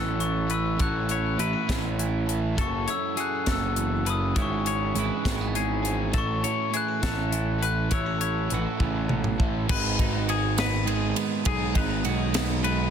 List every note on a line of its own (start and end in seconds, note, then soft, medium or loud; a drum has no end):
0.00 0.77 A1 medium
0.00 0.77 A2 medium
0.00 0.19 E3 medium
0.00 0.76 A3 medium
0.00 0.51 C#4 medium
0.00 1.68 C#4 medium
0.00 0.20 E4 medium
0.00 0.49 E4 medium
0.00 0.80 F#4 medium
0.00 0.47 A4 medium
0.00 0.51 A4 medium
0.00 0.22 E6 medium
0.19 0.83 E3 medium
0.19 0.83 E4 medium
0.19 0.52 C#6 medium
0.19 closed hi-hat medium
0.47 0.78 C#4 medium
0.47 0.79 E4 medium
0.47 0.80 A4 medium
0.47 0.80 B4 medium
0.47 closed hi-hat medium
0.54 0.83 E6 medium
0.77 1.36 A1 medium
0.77 2.55 A2 medium
0.77 1.37 A3 medium
0.77 1.10 C#4 medium
0.77 1.08 E4 medium
0.77 1.39 F#4 medium
0.77 1.10 C#5 medium
0.77 kick loud
0.77 closed hi-hat medium
0.81 1.07 A4 medium
0.81 1.44 F#6 medium
1.07 1.39 C#4 medium
1.07 1.39 E4 medium
1.07 1.39 A4 medium
1.07 closed hi-hat medium
1.11 1.40 C#5 medium
1.37 1.53 A1 medium
1.37 1.99 E3 medium
1.37 1.69 A3 medium
1.37 1.69 C#4 medium
1.37 1.53 E4 medium
1.37 1.67 E4 medium
1.37 1.66 A4 medium
1.37 2.00 B4 medium
1.37 closed hi-hat medium
1.53 2.58 F#4 soft
1.67 2.55 A1 medium
1.67 2.55 A3 medium
1.67 4.68 C#4 medium
1.67 2.29 C#4 medium
1.67 2.28 E4 medium
1.67 2.25 A4 medium
1.67 kick medium
1.67 snare medium
1.67 closed hi-hat medium
1.99 2.61 E3 medium
1.99 2.61 E4 soft
1.99 closed hi-hat medium
2.26 2.56 C#4 soft
2.26 2.58 E4 medium
2.26 2.56 A4 medium
2.26 closed hi-hat medium
2.56 2.86 F#1 medium
2.56 3.77 F#2 medium
2.56 3.14 F#3 medium
2.56 2.88 C#4 medium
2.56 2.86 F#4 medium
2.56 2.89 A4 medium
2.56 2.84 A4 medium
2.56 3.17 A4 medium
2.56 kick loud
2.56 closed hi-hat medium
2.61 2.91 C#6 medium
2.85 3.16 C#4 medium
2.85 4.38 E4 medium
2.85 3.16 F#4 medium
2.85 3.18 A4 medium
2.85 3.18 C#5 medium
2.85 closed hi-hat medium
2.90 3.20 E6 medium
3.15 3.47 F#3 medium
3.15 4.33 F#3 medium
3.15 3.48 C#4 medium
3.15 3.46 F#4 medium
3.15 3.47 G#4 medium
3.15 4.34 A4 medium
3.15 3.44 A4 medium
3.15 closed hi-hat medium
3.20 3.47 F#6 medium
3.45 4.33 F#1 medium
3.45 4.34 F#3 medium
3.45 4.08 C#4 medium
3.45 4.05 F#4 medium
3.45 4.04 A4 medium
3.45 4.07 A4 medium
3.45 kick medium
3.45 snare loud
3.45 closed hi-hat medium
3.52 4.11 E6 medium
3.76 4.06 E2 medium
3.76 closed hi-hat medium
4.05 4.36 F#2 medium
4.05 4.36 C#4 medium
4.05 4.35 F#4 medium
4.05 4.34 A4 medium
4.05 4.36 B4 medium
4.05 closed hi-hat medium
4.10 4.23 D#6 medium
4.35 4.92 G#1 loud
4.35 5.55 G#2 medium
4.35 4.93 G#3 medium
4.35 4.67 C#4 medium
4.35 4.66 E4 medium
4.35 4.99 E4 medium
4.35 4.63 G#4 medium
4.35 4.66 C#5 medium
4.35 kick loud
4.35 closed hi-hat medium
4.42 5.54 C#6 medium
4.64 5.56 C#4 medium
4.64 4.95 C#4 medium
4.64 4.96 E4 medium
4.64 4.96 G#4 medium
4.64 4.97 C#5 medium
4.64 closed hi-hat medium
4.95 5.10 G#1 medium
4.95 6.74 E3 medium
4.95 5.25 G#3 medium
4.95 5.25 C#4 medium
4.95 5.24 E4 medium
4.95 5.22 G#4 medium
4.95 5.56 B4 medium
4.95 closed hi-hat medium
4.99 6.14 E4 medium
5.23 6.11 G#1 medium
5.23 6.11 G#3 medium
5.23 5.85 C#4 medium
5.23 5.84 E4 medium
5.23 5.81 G#4 medium
5.23 kick medium
5.23 snare loud
5.23 closed hi-hat medium
5.28 5.41 G#3 medium
5.41 6.15 B3 soft
5.55 6.12 G#2 medium
5.55 6.44 C#4 medium
5.55 6.14 G#4 medium
5.55 closed hi-hat medium
5.82 6.11 C#4 soft
5.82 6.13 E4 medium
5.82 6.12 G#4 medium
5.82 closed hi-hat medium
6.12 6.42 A1 medium
6.12 7.88 A2 medium
6.12 6.69 A3 medium
6.12 6.44 C#4 medium
6.12 6.43 E4 loud
6.12 6.75 F#4 medium
6.12 6.44 A4 medium
6.12 6.40 A4 medium
6.12 kick loud
6.12 closed hi-hat medium
6.18 6.72 C#6 medium
6.40 6.72 E4 medium
6.40 6.73 A4 medium
6.40 6.74 C#5 medium
6.40 closed hi-hat medium
6.44 6.71 C#4 medium
6.44 6.74 E4 medium
6.70 7.02 A3 medium
6.70 7.01 C#4 medium
6.70 7.00 E4 medium
6.70 7.02 G#4 medium
6.70 6.99 A4 medium
6.70 closed hi-hat medium
6.74 7.30 E3 medium
6.74 6.88 E4 medium
6.74 7.64 F#6 loud
6.88 7.90 F#4 medium
7.00 7.88 A1 medium
7.00 7.88 A3 medium
7.00 7.60 C#4 medium
7.00 7.59 E4 medium
7.00 7.57 A4 medium
7.00 7.62 A4 medium
7.00 kick medium
7.00 snare loud
7.00 closed hi-hat medium
7.04 7.89 C#4 medium
7.32 7.88 E3 medium
7.32 7.89 E4 medium
7.32 closed hi-hat medium
7.58 7.88 C#4 soft
7.58 7.90 E4 medium
7.58 7.91 A4 medium
7.62 7.92 B4 medium
7.62 7.94 F#6 medium
7.62 closed hi-hat medium
7.89 8.47 A1 loud
7.89 9.38 A2 medium
7.89 8.47 A3 medium
7.89 8.20 C#4 medium
7.89 8.06 E4 medium
7.89 8.19 E4 medium
7.89 8.16 A4 medium
7.89 8.20 C#5 medium
7.89 kick loud
7.89 closed hi-hat medium
7.93 9.07 E6 medium
8.06 8.51 F#4 medium
8.18 8.49 C#4 medium
8.18 8.49 E4 medium
8.18 8.50 A4 medium
8.18 8.52 C#5 medium
8.18 closed hi-hat medium
8.23 9.66 E4 medium
8.48 8.65 A1 medium
8.48 8.80 A3 medium
8.48 8.80 C#4 medium
8.48 8.79 E4 medium
8.48 8.77 A4 medium
8.48 closed hi-hat medium
8.52 9.71 E3 medium
8.52 9.67 F#4 medium
8.52 9.11 B4 medium
8.78 9.65 A1 medium
8.78 9.10 C#3 medium
8.78 9.68 A3 medium
8.78 9.40 C#4 medium
8.78 9.39 E4 medium
8.78 9.37 A4 medium
8.78 kick medium
9.09 9.40 B2 medium
9.09 mid tom medium
9.24 mid tom medium
9.38 9.69 A2 medium
9.38 9.69 C#4 medium
9.38 9.68 E4 medium
9.38 9.67 A4 medium
9.38 kick medium
9.67 9.97 G#1 medium
9.67 10.84 G#2 medium
9.67 11.43 G#2 medium
9.67 10.85 D#3 medium
9.67 10.87 G#3 medium
9.67 10.88 B3 loud
9.67 10.29 B4 medium
9.67 kick loud
9.67 crash loud
9.72 10.88 D#4 loud
9.99 11.13 G#1 medium
9.99 11.74 D#4 medium
9.99 kick medium
9.99 ride medium
10.28 11.43 F#4 medium
10.28 10.58 G#4 medium
10.28 ride medium
10.57 11.16 B3 medium
10.57 10.87 B4 medium
10.57 snare loud
10.57 ride loud
10.85 11.43 G#2 medium
10.85 11.44 D#3 medium
10.85 12.08 G#3 medium
10.85 11.47 G#3 medium
10.85 11.48 B3 medium
10.85 11.49 D#4 medium
10.85 11.46 G#4 medium
10.85 ride medium
11.16 12.32 B3 medium
11.16 ride medium
11.45 11.73 B1 medium
11.45 12.61 G#2 loud
11.45 12.90 G#2 medium
11.45 12.62 D#3 medium
11.45 12.65 G#3 medium
11.45 12.65 B3 medium
11.45 11.77 G#4 medium
11.45 kick loud
11.45 ride loud
11.49 12.66 D#4 loud
11.74 12.02 G#1 loud
11.74 12.90 D#4 medium
11.74 12.06 B4 medium
11.74 kick medium
11.74 ride medium
12.04 12.90 B1 medium
12.04 12.90 F#4 medium
12.04 12.64 G#4 medium
12.04 ride medium
12.33 12.90 B3 medium
12.33 snare loud
12.33 ride loud
12.63 12.90 G#2 medium
12.63 12.90 D#3 medium
12.63 12.90 G#3 medium
12.63 12.90 B3 medium
12.63 12.90 D#4 medium
12.63 12.90 B4 medium
12.63 ride medium